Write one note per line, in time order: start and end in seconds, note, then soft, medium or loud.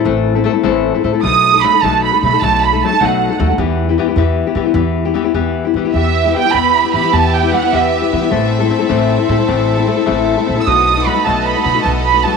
0.05 0.44 A1 medium
0.05 0.35 A2 medium
0.05 0.35 E3 medium
0.05 0.35 A3 medium
0.05 0.35 C4 medium
0.05 0.34 E4 medium
0.05 0.34 A4 medium
0.35 0.43 A3 soft
0.35 0.44 C4 medium
0.35 0.44 E4 soft
0.35 0.45 A4 soft
0.44 0.53 A3 medium
0.44 0.53 C4 medium
0.44 0.52 E4 medium
0.44 0.52 A4 medium
0.53 0.62 A3 soft
0.53 0.63 C4 soft
0.53 0.63 E4 medium
0.53 0.63 A4 medium
0.63 0.90 A1 medium
0.63 0.94 A2 medium
0.63 0.94 E3 medium
0.63 0.94 A3 medium
0.63 0.94 C4 medium
0.63 0.94 E4 medium
0.63 0.93 A4 medium
0.94 1.02 A3 soft
0.94 1.03 C4 soft
0.94 1.03 E4 soft
0.94 1.03 A4 soft
1.03 1.17 A2 medium
1.03 1.13 A3 soft
1.03 1.13 C4 medium
1.03 1.13 E4 medium
1.03 1.12 A4 medium
1.13 1.23 A3 soft
1.13 1.23 C4 soft
1.13 1.24 E4 soft
1.13 1.23 A4 soft
1.23 1.62 B1 medium
1.23 1.54 B2 medium
1.23 1.54 F#3 medium
1.23 1.54 A3 medium
1.23 1.54 D#4 medium
1.23 1.52 A4 medium
1.23 1.61 D#6 medium
1.54 1.63 A3 soft
1.54 1.63 D#4 soft
1.54 1.64 A4 soft
1.63 1.74 F#3 medium
1.63 1.74 A3 medium
1.63 1.74 D#4 medium
1.63 1.73 A4 medium
1.63 1.83 B5 medium
1.74 1.82 A3 soft
1.74 1.83 D#4 soft
1.74 1.83 A4 soft
1.83 2.09 B1 medium
1.83 2.14 B2 medium
1.83 2.14 F#3 medium
1.83 2.14 A3 medium
1.83 2.13 D#4 medium
1.83 2.12 A4 medium
1.83 2.04 A5 medium
2.04 2.22 B5 medium
2.14 2.23 A3 soft
2.14 2.24 D#4 soft
2.14 2.24 A4 soft
2.23 2.36 B2 medium
2.23 2.34 F#3 soft
2.23 2.34 A3 medium
2.23 2.33 D#4 medium
2.23 2.32 A4 medium
2.23 2.41 B5 medium
2.33 2.42 A3 soft
2.33 2.42 D#4 soft
2.33 2.43 A4 medium
2.42 2.80 B1 medium
2.42 2.73 B2 medium
2.42 2.73 F#3 medium
2.42 2.73 A3 medium
2.42 2.73 D#4 medium
2.42 2.72 A4 medium
2.42 2.63 A5 medium
2.63 2.83 B5 medium
2.73 2.84 A3 soft
2.73 2.83 D#4 soft
2.73 2.83 A4 medium
2.84 2.93 F#3 medium
2.84 2.93 A3 medium
2.84 2.92 D#4 medium
2.84 2.91 A4 medium
2.84 3.04 A5 medium
2.92 3.01 A3 soft
2.92 3.01 D#4 soft
2.92 3.01 A4 soft
3.01 3.27 B1 medium
3.01 3.31 B2 medium
3.01 3.31 F#3 medium
3.01 3.30 A3 medium
3.01 3.30 D#4 medium
3.01 3.29 A4 medium
3.01 3.46 F#5 medium
3.30 3.39 A3 soft
3.30 3.39 D#4 soft
3.30 3.39 A4 soft
3.39 3.52 D#2 medium
3.39 3.50 F#3 medium
3.39 3.50 A3 medium
3.39 3.49 D#4 medium
3.39 3.49 A4 medium
3.50 3.58 A3 soft
3.50 3.59 D#4 soft
3.50 3.59 A4 medium
3.58 3.96 E2 loud
3.58 3.89 E3 medium
3.58 3.89 B3 medium
3.58 3.88 E4 medium
3.58 3.88 G4 medium
3.89 3.98 B3 medium
3.89 3.98 E4 medium
3.89 3.98 G4 medium
3.98 4.08 E3 medium
3.98 4.08 B3 medium
3.98 4.07 E4 medium
3.98 4.07 G4 medium
4.08 4.16 B3 medium
4.08 4.17 E4 medium
4.08 4.17 G4 medium
4.16 4.42 E2 medium
4.16 4.47 E3 medium
4.16 4.47 B3 medium
4.16 4.47 E4 loud
4.16 4.46 G4 medium
4.47 4.55 B3 soft
4.47 4.55 E4 soft
4.47 4.55 G4 medium
4.55 4.65 E3 medium
4.55 4.68 E3 medium
4.55 4.66 B3 medium
4.55 4.65 E4 medium
4.55 4.64 G4 medium
4.65 4.73 B3 medium
4.65 4.74 E4 soft
4.65 4.74 G4 medium
4.74 5.13 E2 loud
4.74 5.05 E3 medium
4.74 5.05 B3 medium
4.74 5.05 E4 medium
4.74 5.04 G4 medium
5.05 5.13 B3 soft
5.05 5.14 E4 medium
5.05 5.14 G4 medium
5.14 5.24 E3 medium
5.14 5.25 B3 medium
5.14 5.24 E4 medium
5.14 5.23 G4 medium
5.24 5.33 B3 soft
5.24 5.34 E4 soft
5.24 5.34 G4 medium
5.34 5.61 E2 medium
5.34 5.65 E3 medium
5.34 5.65 B3 medium
5.34 5.65 E4 medium
5.34 5.63 G4 medium
5.65 5.76 B3 soft
5.65 5.76 E4 soft
5.65 5.75 G4 soft
5.74 5.87 E3 medium
5.74 5.85 E3 medium
5.74 5.85 B3 medium
5.74 5.85 E4 medium
5.78 5.84 G4 medium
5.85 5.94 B3 soft
5.85 5.95 E4 medium
5.85 5.95 G4 medium
5.94 6.33 E2 medium
5.94 6.25 E3 medium
5.94 8.29 B3 medium
5.94 6.25 B3 medium
5.94 6.25 E4 medium
5.94 8.29 G4 medium
5.94 6.24 G4 medium
5.94 6.31 E5 medium
5.94 10.64 E5 medium
6.25 6.34 B3 soft
6.25 6.34 E4 soft
6.25 6.35 G4 soft
6.35 6.44 E3 medium
6.35 6.45 B3 medium
6.35 6.45 E4 medium
6.35 6.44 G4 medium
6.35 6.56 G5 medium
6.45 6.53 B3 soft
6.45 6.53 E4 soft
6.45 6.53 G4 soft
6.54 6.80 E2 medium
6.54 6.84 E3 medium
6.54 6.85 B3 medium
6.54 6.84 E4 medium
6.54 6.83 G4 medium
6.54 6.93 B5 medium
6.84 6.93 B3 soft
6.84 6.94 E4 soft
6.84 6.94 G4 soft
6.94 7.06 E3 medium
6.94 7.04 E3 soft
6.94 7.03 B3 soft
6.94 7.03 E4 soft
6.94 7.02 G4 soft
6.94 7.12 B5 medium
7.03 7.12 B3 soft
7.03 7.12 E4 soft
7.03 7.12 G4 medium
7.13 7.52 E2 medium
7.13 7.43 E3 medium
7.13 7.43 B3 medium
7.13 7.43 E4 medium
7.13 7.42 G4 medium
7.13 7.35 A5 medium
7.34 7.54 G5 medium
7.43 7.51 B3 soft
7.43 7.52 E4 soft
7.43 7.52 G4 medium
7.52 7.62 E3 medium
7.52 7.63 B3 medium
7.52 7.62 E4 medium
7.52 7.61 G4 medium
7.52 7.73 F#5 medium
7.63 7.72 B3 soft
7.63 7.72 E4 soft
7.63 7.72 G4 soft
7.72 7.99 E2 medium
7.72 8.03 E3 medium
7.72 8.02 B3 medium
7.72 8.02 E4 medium
7.72 8.01 G4 medium
7.72 8.17 E5 medium
8.02 8.11 B3 soft
8.02 8.12 E4 soft
8.02 8.12 G4 soft
8.12 8.22 E3 medium
8.12 8.25 E3 medium
8.12 8.21 B3 medium
8.12 8.20 E4 medium
8.12 8.20 G4 medium
8.21 8.30 B3 soft
8.21 8.30 E4 soft
8.21 8.31 G4 medium
8.30 8.69 A1 medium
8.30 8.60 A2 medium
8.30 8.61 E3 medium
8.30 8.61 A3 medium
8.30 8.60 C4 medium
8.30 10.66 C4 medium
8.30 8.59 E4 medium
8.30 8.59 A4 medium
8.30 12.37 A4 medium
8.60 8.68 A3 soft
8.60 8.69 C4 medium
8.60 8.69 E4 medium
8.60 8.70 A4 medium
8.70 8.79 A3 medium
8.70 8.79 C4 medium
8.70 8.79 E4 medium
8.70 8.78 A4 medium
8.79 8.88 A3 soft
8.79 8.88 C4 soft
8.79 8.88 E4 soft
8.79 8.88 A4 medium
8.89 9.15 A1 medium
8.89 9.19 A2 medium
8.89 9.19 E3 medium
8.89 9.19 A3 medium
8.89 9.19 C4 medium
8.89 9.18 E4 medium
8.89 9.18 A4 medium
9.19 9.27 A3 soft
9.19 9.28 C4 soft
9.19 9.28 E4 soft
9.19 9.28 A4 soft
9.28 9.41 A2 medium
9.28 9.38 A3 medium
9.28 9.38 C4 medium
9.28 9.37 E4 medium
9.28 9.37 A4 medium
9.38 9.47 A3 soft
9.38 9.47 C4 soft
9.38 9.47 E4 soft
9.38 9.47 A4 soft
9.48 9.87 A1 medium
9.48 9.78 A2 medium
9.48 9.78 E3 medium
9.48 9.78 A3 medium
9.48 9.78 C4 medium
9.48 9.77 E4 medium
9.48 9.76 A4 medium
9.77 9.86 A3 soft
9.77 9.86 C4 medium
9.77 9.87 E4 soft
9.77 9.87 A4 medium
9.87 9.97 A3 medium
9.87 9.97 C4 medium
9.87 9.95 E4 medium
9.87 9.95 A4 medium
9.97 10.05 A3 soft
9.97 10.06 C4 soft
9.97 10.06 E4 soft
9.97 10.06 A4 soft
10.06 10.34 A1 medium
10.06 10.37 A2 medium
10.06 10.38 E3 medium
10.06 10.38 A3 medium
10.06 10.37 C4 medium
10.06 10.37 E4 medium
10.06 10.36 A4 medium
10.37 10.45 A3 soft
10.37 10.45 C4 soft
10.37 10.47 E4 soft
10.37 10.47 A4 soft
10.46 10.61 A#1 medium
10.46 10.56 A3 medium
10.46 10.56 C4 medium
10.46 10.55 E4 medium
10.46 10.54 A4 medium
10.56 10.66 A3 soft
10.56 10.67 C4 soft
10.56 10.67 E4 soft
10.56 10.67 A4 soft
10.61 10.68 E6 medium
10.66 11.06 B1 medium
10.66 10.97 B2 medium
10.66 10.98 F#3 medium
10.66 10.97 A3 medium
10.66 12.37 B3 medium
10.66 10.96 D#4 medium
10.66 10.95 F#4 medium
10.66 12.37 D#5 medium
10.66 11.08 D#6 medium
10.96 11.05 A3 soft
10.96 11.06 D#4 soft
10.96 11.06 F#4 soft
11.06 11.17 F#3 medium
11.06 11.15 A3 medium
11.06 11.15 D#4 medium
11.06 11.14 F#4 medium
11.06 11.27 B5 medium
11.15 11.25 A3 soft
11.15 11.25 D#4 soft
11.15 11.25 F#4 soft
11.25 11.53 B1 medium
11.25 11.56 B2 medium
11.25 11.56 F#3 medium
11.25 11.56 A3 medium
11.25 11.56 D#4 medium
11.25 11.55 F#4 medium
11.25 11.47 A5 medium
11.45 11.63 B5 medium
11.57 11.65 A3 soft
11.57 11.65 D#4 soft
11.57 11.65 F#4 soft
11.64 11.78 B2 medium
11.64 11.75 F#3 medium
11.64 11.75 A3 soft
11.64 11.74 D#4 medium
11.64 11.73 F#4 medium
11.64 11.83 B5 medium
11.75 11.83 A3 soft
11.75 11.83 D#4 soft
11.75 11.83 F#4 soft
11.83 12.24 B1 medium
11.83 12.14 B2 medium
11.83 12.15 F#3 soft
11.83 12.14 A3 soft
11.83 12.13 D#4 medium
11.83 12.13 F#4 medium
11.83 11.93 A5 medium
12.05 12.23 B5 medium
12.14 12.23 A3 soft
12.14 12.24 D#4 soft
12.14 12.24 F#4 medium
12.23 12.34 F#3 medium
12.23 12.33 A3 medium
12.23 12.32 D#4 medium
12.23 12.31 F#4 medium
12.23 12.37 A5 medium
12.33 12.37 D#4 soft
12.33 12.37 F#4 soft